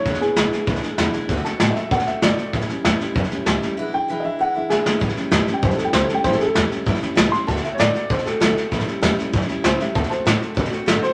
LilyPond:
<<
  \new Staff \with { instrumentName = "Upright piano" } { \time 4/4 \key a \mixolydian \tempo 4 = 194 cis''8 <b gis'>2 r4. | r8 a''4 <dis'' e''>8 fis''8 e''8 d''4 | r1 | r8 g''4 <dis'' e''>8 fis''8 e''8 <gis' e''>4 |
r4 \tuplet 3/2 { r4 g''8 c''8 a'8 g''8 c''8 a'8 g''8 } | \tuplet 3/2 { c''8 a'8 <gis' a'>8~ } <gis' a'>4. r4 c'''8 | a''8 e''8 <cis'' d''>4 c''8 a'8 a'4~ | a'4 r2 c''8 e''8 |
a''8 <c'' a''>2 r8 a'8 c''8 | }
  \new Staff \with { instrumentName = "Steel-string acoustic guitar" } { \time 4/4 \key a \mixolydian <e, b, e gis d' e'>8 <e gis d' e'>8 <e, b, e gis d' e'>8 <e gis d' e'>8 <e gis d' e'>8 <e gis d' e'>8 <e, b, e gis d' e'>8 <e gis d' e'>8 | <d a c' fis'>8 <a c' fis'>8 <d a c' fis'>8 <a c' fis'>8 <d a c' fis'>8 <a c' fis'>8 <d a c' fis'>8 <a c' fis'>8 | <a, e g cis' e'>8 <g cis' e'>8 <a, e g cis' e'>8 <g cis' e'>8 <e g cis' e'>8 <g cis' e'>8 <a, e g cis' e'>8 <g cis' e'>8 | <e, b, e gis d' e'>8 <e gis d' e'>8 <e, b, e gis d' e'>8 <e gis d' e'>8 <e gis d' e'>8 <e gis d' e'>8 <e, b, e gis d' e'>8 <e gis d' e'>8 |
<a, e g cis' e'>8 <g cis' e'>8 <a, e g cis' e'>8 <g cis' e'>8 <e g cis' e'>8 <g cis' e'>8 <a, e g cis' e'>8 <g cis' e'>8 | <a, e g cis' e'>8 <g cis' e'>8 <a, e g cis' e'>8 <g cis' e'>8 <e g cis' e'>8 <g cis' e'>8 <a, e g cis' e'>8 <g cis' e'>8 | <d a c' fis'>8 <a c' fis'>8 <d a c' fis'>8 <a c' fis'>8 <d a c' fis'>8 <a c' fis'>8 <d a c' fis'>8 <a c' fis'>8 | <a, e g cis' e'>8 <g cis' e'>8 <a, e g cis' e'>8 <g cis' e'>8 <e g cis' e'>8 <g cis' e'>8 <a, e g cis' e'>8 <g cis' e'>8 |
<d a c' fis'>8 <a c' fis'>8 <d a c' fis'>8 <a c' fis'>8 <d a c' fis'>8 <a c' fis'>8 <d a c' fis'>8 <a c' fis'>8 | }
  \new Staff \with { instrumentName = "Upright bass" } { \clef bass \time 4/4 \key a \mixolydian e,,8 r8 b,,8 r8 cis,8 r8 e,8 r8 | d,8 r8 a,8 r8 b,8 r8 g,,8 r8 | a,,8 r8 e,8 r8 fis,8 r8 cis,8 r8 | r1 |
a,,8 r8 e,8 r8 fis,8 r8 cis,8 r8 | a,,8 r8 e,8 r8 fis,8 r8 cis,8 r8 | d,8 r8 a,8 r8 b,8 r8 b,,8 r8 | a,,8 r8 e,8 r8 fis,8 r8 cis,8 r8 |
d,8 r8 a,8 r8 b,8 r8 gis,,8 r8 | }
  \new DrumStaff \with { instrumentName = "Drums" } \drummode { \time 4/4 <bd sn>16 sn16 sn8 <hhp sn>8 sn8 <bd sn>16 sn16 sn8 <hhp sn>8 sn8 | <bd sn>16 sn16 sn8 <hhp sn>8 sn8 <bd sn>16 sn16 sn8 <hhp sn>8 sn8 | <bd sn>16 sn16 sn8 <hhp sn>8 sn8 <bd sn>16 sn16 sn8 <hhp sn>8 sn8 | r4 r4 r4 sn8 sn8 |
<bd sn>16 sn16 sn8 <hhp sn>8 sn8 <bd sn>16 sn16 sn8 <hhp sn>8 sn8 | <bd sn>16 sn16 sn8 <hhp sn>8 sn8 <bd sn>16 sn16 sn8 <hhp sn>8 sn8 | <bd sn>16 sn16 sn8 <hhp sn>8 sn8 <bd sn>16 sn16 sn8 <hhp sn>8 sn8 | <bd sn>16 sn16 sn8 <hhp sn>8 sn8 <bd sn>16 sn16 sn8 <hhp sn>8 sn8 |
<bd sn>16 sn16 sn8 <hhp sn>8 sn8 <bd sn>16 sn16 sn8 <hhp sn>8 sn8 | }
>>